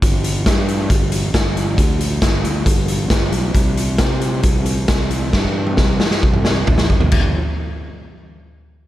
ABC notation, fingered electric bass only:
X:1
M:4/4
L:1/8
Q:1/4=135
K:G
V:1 name="Fingered electric bass" clef=bass
G,,,2 G,,2 G,,,2 G,,,2 | D,,2 G,,, D,, G,,,2 G,,, B,,, | C,,2 C,2 C,,2 C,,2 | G,,2 C,, G,, C,,2 A,,, G,,, |
G,,, z6 z |]